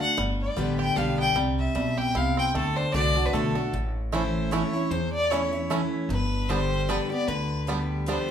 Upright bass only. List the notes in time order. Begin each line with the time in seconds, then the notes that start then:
0.18 G1
0.57 A1
0.97 B1
1.37 C2
1.76 B1
2.15 C2
2.55 D2
2.94 C2
3.34 B1
3.73 A1
4.91 E2
6.09 G1
7.28 D2